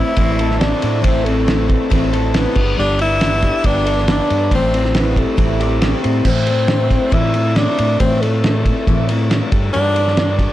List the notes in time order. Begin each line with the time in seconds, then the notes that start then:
Already playing: A2 E3 C4 E4 A4
0.00 A3 C4 E4
0.17 A1 A2 E3 A3 C4 E4 A4, kick, ride
0.38 A3 C4 E4 A4, ride
0.51 snare
0.59 A3 C4 D4 E4 A4, snare, ride
0.81 A2 A3 C4 E4 A4, ride
1.01 A2 E3 A3 C4 E4 A4, kick, ride
1.05 A1 A2
1.23 A3 C4 E4 A4, ride
1.44 A3 C4 E4 A4, snare, ride
1.66 A3 C4 E4 A4, kick, ride
1.70 E3
1.89 A1 A2 E3 A3 C4 E4 A4, kick, ride
2.12 A3 C4 E4 A4, ride
2.33 A3 B3 C4 E4 A4, snare, ride
2.55 G1 G3 D4 G4 A4, kick, crash
2.77 G1 G3 B3 D4 G4 A4
2.99 B3 D4 E4 G4 A4, ride
3.21 B3 D4 G4 A4, snare, ride
3.42 G3 D4 G4 A4, kick, snare, ride
3.63 G1 G3 B3 D4 G4 A4, kick, ride
3.85 D4 G4 A4, ride
3.98 snare
4.06 B3 D4 G4 A4, snare, ride
4.12 D4
4.28 G2 B3 D4 G4 A4, ride
4.51 A1 A2 E3 G3 C4 E4 A4, kick, ride
4.73 G3 C4 E4 A4, ride
4.85 snare
4.94 G3 C4 E4 A4, snare, ride
4.99 B3
5.16 G3 A3 C4 E4 A4, kick, ride
5.36 A1 A2 E3 G3 C4 E4 A4, kick, ride
5.60 G3 C4 E4 G4 A4, ride
5.82 G3 C4 E4 A4, snare, ride
6.04 A2 G3 C4 E4 A4, ride
6.25 A2 E3 A3 C4 E4 A4, kick, crash
6.47 E4 A4, ride
6.51 A3 C4
6.68 A3 C4 E4 A4, snare, ride
6.91 A3 C4 E4 A4, kick, snare, ride
7.10 A2 E3 A3 C4 E4 A4, kick, ride
7.14 E4
7.33 A3 C4 E4 A4, ride
7.55 A3 C4 D4 E4 A4, snare, ride
7.77 A2 A3 C4 E4 A4, ride
7.99 A2 E3 A3 C4 E4 A4, kick, ride
8.21 A3 C4 E4 A4, ride
8.43 A3 C4 E4 A4, snare, ride
8.65 C4 E4 A4, kick, ride
8.70 A3
8.87 A2 E3 A3 C4 E4 A4, kick, ride
9.09 A3 C4 E4 A4, ride
9.30 A3 C4 E4 A4, snare, ride
9.52 G2 D4 G4 A4, kick, ride
9.73 G2 G3 B3 D4 G4 A4, ride
9.96 D4 G4 A4, ride
10.08 snare
10.17 B3 D4 G4 A4, snare, ride
10.39 D4 G4 A4, kick, snare, ride